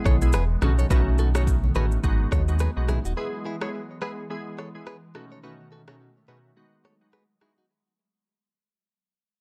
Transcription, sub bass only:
0.06 0.35 B1 loud
0.34 0.57 E1 medium
0.62 0.85 B1 loud
0.90 1.71 B1 loud
1.75 1.98 A1 medium
2.04 2.26 G#1 loud
2.32 2.68 D#2 medium
2.77 3.00 B1 medium
3.05 3.15 D#1 medium

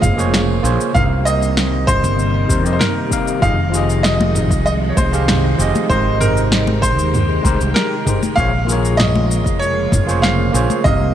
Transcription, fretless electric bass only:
0.02 0.59 F1 medium
0.64 0.76 A#1 loud
0.95 2.05 C2 medium
2.04 2.45 G1 loud
2.50 2.66 D#2 medium
2.66 2.78 F2 loud
3.42 4.51 F1 loud
4.51 4.92 C2 loud
4.97 5.54 C2 medium
5.59 5.71 F1 loud
5.90 6.99 G#1 medium
6.99 7.40 D#2 loud
7.45 7.57 C2 medium
7.61 7.73 C2 loud
8.37 9.46 A#1 loud
9.46 9.87 F1 loud
9.92 10.49 F1 medium
10.54 10.66 A#1 loud
10.85 11.14 C2 loud

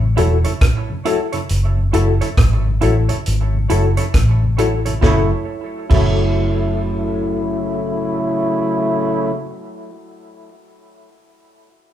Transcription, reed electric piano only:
0.17 0.37 E4 medium
0.17 0.37 F#4 medium
0.17 0.37 A4 medium
1.05 1.25 E4 medium
1.05 1.25 F#4 medium
1.05 1.25 A4 loud
1.93 2.13 E4 medium
1.93 2.13 F#4 medium
1.93 2.14 A4 loud
2.81 3.01 E4 medium
2.81 3.01 F#4 medium
2.81 3.02 A4 loud
3.70 3.89 E4 medium
3.70 3.90 F#4 medium
3.70 3.90 A4 medium
4.58 4.78 E4 medium
4.58 4.78 F#4 medium
4.58 4.78 A4 loud
5.02 5.31 E4 medium
5.02 5.31 F#4 medium
5.02 5.31 A4 medium
5.90 9.43 E4 medium
5.90 9.43 F#4 medium
5.90 9.44 A4 medium

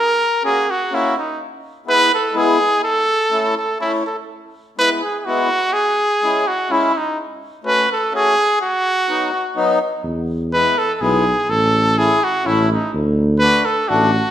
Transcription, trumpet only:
0.00 0.41 A#4 medium
0.45 0.72 G#4 medium
0.71 0.96 F#4 medium
0.94 1.18 E4 medium
1.18 1.39 D#4 medium
1.89 2.12 B4 loud
2.14 2.38 A4 medium
2.37 2.83 G#4 loud
2.84 3.54 A4 medium
3.57 3.79 A4 medium
3.81 3.92 E4 medium
4.06 4.17 A4 medium
4.78 4.90 B4 loud
5.02 5.19 G#4 medium
5.19 5.27 G#4 medium
5.25 5.75 F#4 loud
5.73 6.49 G#4 medium
6.47 6.73 F#4 medium
6.71 6.99 E4 medium
6.97 7.18 D#4 medium
7.67 7.88 B4 loud
7.92 8.12 A4 medium
8.15 8.58 G#4 loud
8.62 9.78 F#4 medium
10.53 10.80 B4 medium
10.78 10.95 A4 medium
10.95 11.02 A4 medium
11.01 11.51 G#4 medium
11.50 12.00 A4 medium
11.98 12.25 G#4 medium
12.24 12.48 F#4 medium
12.46 12.71 E4 medium
12.73 12.93 D#4 medium
13.39 13.67 B4 loud
13.65 13.90 A4 medium
13.88 14.31 F#4 loud

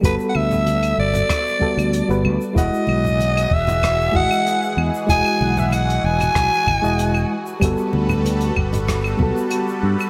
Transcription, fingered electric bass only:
0.03 0.16 G1 loud
0.35 0.92 D2 medium
0.98 1.22 G1 medium
1.77 2.01 D2 medium
2.09 2.26 G1 medium
2.24 2.37 D2 loud
2.56 2.68 E1 loud
2.88 3.45 B1 medium
3.51 4.08 E1 medium
4.15 4.27 G#1 medium
4.77 4.89 E2 medium
5.09 5.21 E1 loud
5.41 5.98 B1 medium
6.04 6.28 E1 loud
6.35 6.48 B1 medium
6.67 6.79 G#1 loud
6.84 7.24 E1 medium
7.62 7.74 G1 loud
7.94 8.50 D2 medium
8.57 9.14 G1 medium
9.20 9.32 B1 loud
9.83 9.95 G2 medium

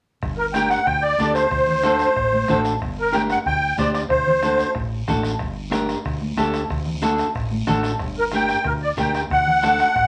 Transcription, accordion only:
0.38 0.45 A#4 medium
0.54 0.69 G5 loud
0.69 0.87 F#5 loud
0.86 1.03 G5 loud
1.02 1.33 D5 loud
1.34 2.61 C5 medium
3.00 3.15 A#4 medium
3.15 3.22 G5 loud
3.31 3.38 F#5 loud
3.46 3.76 G5 loud
3.78 3.92 D5 medium
3.93 4.01 D5 medium
4.09 4.71 C5 medium
8.19 8.25 A#4 medium
8.35 8.67 G5 loud
8.66 8.73 A#4 medium
8.83 8.90 D5 medium
9.00 9.13 G5 medium
9.14 9.21 G5 medium
9.32 10.07 F#5 loud

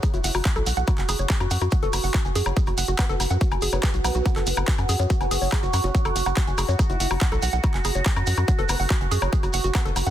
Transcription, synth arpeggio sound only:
0.03 0.10 G#4 medium
0.14 0.21 F#4 medium
0.24 0.32 F#5 loud
0.35 0.42 F#4 medium
0.45 0.48 F#5 medium
0.56 0.61 A4 loud
0.66 0.69 F#5 medium
0.77 0.82 F#5 loud
0.88 0.90 F#4 medium
0.98 1.01 G#5 medium
1.09 1.12 G#4 loud
1.19 1.24 C#5 medium
1.30 1.37 G#4 medium
1.40 1.48 F#4 medium
1.51 1.58 F#5 loud
1.61 1.69 F#4 medium
1.72 1.75 F#5 medium
1.83 1.88 A4 loud
1.93 1.96 F#5 medium
2.04 2.09 F#5 loud
2.14 2.17 F#4 medium
2.25 2.28 G#5 medium
2.35 2.38 G#4 loud
2.46 2.51 C#5 medium
2.57 2.64 G#4 medium
2.67 2.74 F#4 medium
2.78 2.85 F#5 loud
2.88 2.96 F#4 medium
2.99 3.02 F#5 medium
3.09 3.14 A4 loud
3.20 3.23 F#5 medium
3.30 3.35 F#5 loud
3.41 3.44 F#4 medium
3.52 3.55 G#5 medium
3.62 3.65 G#4 loud
3.73 3.78 C#5 medium
3.83 3.91 G#4 medium
3.94 4.01 F#4 medium
4.04 4.12 F#5 loud
4.15 4.22 F#4 medium
4.26 4.29 F#5 medium
4.36 4.41 A4 loud
4.47 4.50 F#5 medium
4.57 4.62 F#5 loud
4.68 4.71 F#4 medium
4.78 4.81 G#5 medium
4.89 4.92 G#4 loud
5.00 5.04 C#5 medium
5.10 5.13 F#4 medium
5.21 5.24 G#5 medium
5.31 5.34 G#4 loud
5.42 5.47 C#5 medium
5.52 5.60 G#4 medium
5.63 5.70 F#4 medium
5.73 5.81 F#5 loud
5.84 5.91 F#4 medium
5.95 5.98 F#5 medium
6.05 6.10 A4 loud
6.16 6.19 F#5 medium
6.26 6.31 F#5 loud
6.37 6.40 F#4 medium
6.47 6.50 G#5 medium
6.58 6.61 G#4 loud
6.69 6.73 C#5 medium
6.79 6.86 G#4 medium
6.90 6.97 F#4 medium
7.00 7.08 F#5 loud
7.11 7.18 F#4 medium
7.21 7.24 F#5 medium
7.32 7.37 A4 loud
7.42 7.45 F#5 medium
7.53 7.58 F#5 loud
7.64 7.67 F#4 medium
7.74 7.77 G#5 medium
7.85 7.88 G#4 loud
7.95 8.00 C#5 medium
8.06 8.13 G#4 medium
8.16 8.24 F#4 medium
8.27 8.34 F#5 loud
8.38 8.45 F#4 medium
8.48 8.51 F#5 medium
8.59 8.64 A4 loud
8.69 8.72 F#5 medium
8.80 8.85 F#5 loud
8.90 8.93 F#4 medium
9.01 9.04 G#5 medium
9.11 9.14 G#4 loud
9.22 9.27 C#5 medium
9.33 9.40 G#4 medium
9.43 9.51 F#4 medium
9.54 9.61 F#5 loud
9.64 9.72 F#4 medium
9.75 9.78 F#5 medium
9.85 9.90 A4 loud
9.96 9.99 F#5 medium
10.07 10.10 F#5 loud

